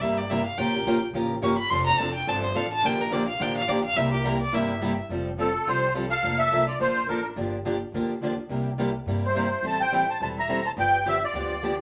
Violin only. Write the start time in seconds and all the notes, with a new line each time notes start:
0.01 E5
0.18 D5
0.30 E5
0.45 F5
0.58 G5
1.43 C#6
1.58 B5
1.70 C6
1.86 A#5
1.99 A5
2.14 G5
2.28 A5
2.43 C5
2.56 F5
2.73 A5
2.85 G5
3.01 A#4
3.12 D5
3.28 F5
3.42 G5
3.57 F5
3.69 D5
3.84 F5
3.97 E5
4.12 G4
4.25 A#4
4.42 D5
4.54 E5
5.38 C4
5.64 F4
6.09 A4
6.36 A4
6.67 F4
6.80 F4
7.08 D4
9.26 E4
9.66 C5
9.82 C5
10.10 C5
10.21 C5
10.37 E5
10.65 C5
10.77 B4
11.06 G4
11.24 F4